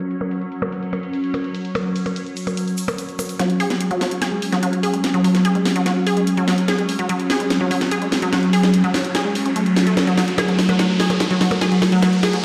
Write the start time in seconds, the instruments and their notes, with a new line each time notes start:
Already playing: ambient pad F#3 C#4, downlifter
0.00 closed hi-hat
0.11 closed hi-hat, shaker
0.21 percussion blips, shaker
0.31 closed hi-hat, shaker
0.41 closed hi-hat, shaker
0.52 closed hi-hat, shaker
0.62 closed hi-hat, percussion blips, shaker
0.72 closed hi-hat, shaker
0.83 closed hi-hat, shaker
0.93 closed hi-hat, percussion blips, shaker
1.03 closed hi-hat, shaker
1.13 closed hi-hat, shaker
1.24 closed hi-hat, shaker
1.34 closed hi-hat, percussion blips, shaker
1.44 closed hi-hat, shaker
1.55 closed hi-hat, shaker
1.64 closed hi-hat, shaker
1.75 closed hi-hat, percussion blips, shaker
1.96 closed hi-hat, shaker
2.06 closed hi-hat, percussion blips, shaker
2.16 closed hi-hat, shaker
2.26 closed hi-hat, shaker
2.37 closed hi-hat, shaker
2.47 closed hi-hat, percussion blips, shaker
2.57 closed hi-hat, shaker
2.68 closed hi-hat, shaker
2.77 closed hi-hat, shaker
2.88 closed hi-hat, percussion blips, shaker
2.98 closed hi-hat, shaker
3.08 closed hi-hat, shaker
3.19 closed hi-hat, percussion blips, shaker
3.29 closed hi-hat, shaker
3.39 synth arpeggio sound F#3, ambient pad F#3 C#4, snare, closed hi-hat, riser
3.50 closed hi-hat
3.60 synth arpeggio sound G#4, open hi-hat
3.70 synth arpeggio sound G#3, snare, closed hi-hat
3.81 closed hi-hat
3.91 synth arpeggio sound F#3, closed hi-hat
4.01 synth arpeggio sound F#3, snare, open hi-hat
4.11 closed hi-hat
4.22 synth arpeggio sound G#4, snare, closed hi-hat
4.32 synth arpeggio sound G#3
4.42 open hi-hat
4.52 synth arpeggio sound F#3, snare, closed hi-hat
4.63 synth arpeggio sound F#3, closed hi-hat
4.73 closed hi-hat
4.83 synth arpeggio sound G#4, open hi-hat
4.94 synth arpeggio sound G#3, closed hi-hat
5.04 snare, closed hi-hat
5.14 synth arpeggio sound F#3, closed hi-hat
5.24 synth arpeggio sound F#3, open hi-hat
5.35 snare, closed hi-hat
5.45 synth arpeggio sound G#4, closed hi-hat
5.55 synth arpeggio sound G#3, closed hi-hat
5.65 snare, open hi-hat
5.76 synth arpeggio sound F#3, closed hi-hat
5.86 synth arpeggio sound F#3, snare, closed hi-hat
6.07 synth arpeggio sound G#4, open hi-hat
6.17 synth arpeggio sound G#3, closed hi-hat
6.27 closed hi-hat
6.37 synth arpeggio sound F#3, closed hi-hat
6.48 synth arpeggio sound F#3, snare, open hi-hat
6.58 closed hi-hat
6.68 synth arpeggio sound G#4, snare, closed hi-hat
6.78 synth arpeggio sound G#3, closed hi-hat
6.89 open hi-hat
6.99 synth arpeggio sound F#3, closed hi-hat
7.09 synth arpeggio sound F#3, closed hi-hat
7.20 closed hi-hat
7.30 synth arpeggio sound G#4, snare, open hi-hat
7.40 synth arpeggio sound G#3, closed hi-hat
7.50 snare, closed hi-hat
7.61 synth arpeggio sound F#3
7.71 synth arpeggio sound F#3, open hi-hat
7.81 snare, closed hi-hat
7.91 synth arpeggio sound G#4, closed hi-hat
8.02 synth arpeggio sound G#3, closed hi-hat
8.12 snare, open hi-hat
8.22 synth arpeggio sound F#3, closed hi-hat
8.33 synth arpeggio sound F#3, snare, closed hi-hat
8.43 closed hi-hat
8.53 synth arpeggio sound G#4, open hi-hat
8.63 synth arpeggio sound G#3, snare, closed hi-hat
8.74 closed hi-hat
8.84 synth arpeggio sound F#3, closed hi-hat
8.94 synth arpeggio sound F#3, snare, open hi-hat
9.04 closed hi-hat
9.15 synth arpeggio sound G#4, snare, closed hi-hat
9.25 synth arpeggio sound G#3
9.35 open hi-hat
9.46 synth arpeggio sound C#4, closed hi-hat
9.56 synth arpeggio sound A3, closed hi-hat
9.66 closed hi-hat
9.76 synth arpeggio sound F#3, snare, open hi-hat
9.87 synth arpeggio sound A3, closed hi-hat
9.97 ambient pad A3, snare, closed hi-hat, percussion blips
10.07 synth arpeggio sound F#3, closed hi-hat
10.18 synth arpeggio sound F#3, snare, open hi-hat
10.28 closed hi-hat
10.38 synth arpeggio sound G#4, snare, closed hi-hat, percussion blips
10.48 synth arpeggio sound F#3, closed hi-hat
10.59 snare, open hi-hat
10.69 synth arpeggio sound F#3, closed hi-hat, percussion blips
10.79 synth arpeggio sound F#3, snare, closed hi-hat
11.00 synth arpeggio sound G#4, snare, open hi-hat
11.10 synth arpeggio sound F#3, closed hi-hat, percussion blips
11.20 snare, closed hi-hat
11.31 synth arpeggio sound F#3, closed hi-hat
11.41 synth arpeggio sound F#3, snare, open hi-hat
11.51 closed hi-hat, percussion blips
11.61 synth arpeggio sound G#4, snare, closed hi-hat
11.72 synth arpeggio sound F#3, closed hi-hat
11.82 snare, open hi-hat, percussion blips
11.92 synth arpeggio sound F#3, closed hi-hat
12.02 synth arpeggio sound F#3, snare, closed hi-hat
12.13 closed hi-hat
12.23 synth arpeggio sound G#4, snare, open hi-hat, percussion blips
12.33 synth arpeggio sound F#3, closed hi-hat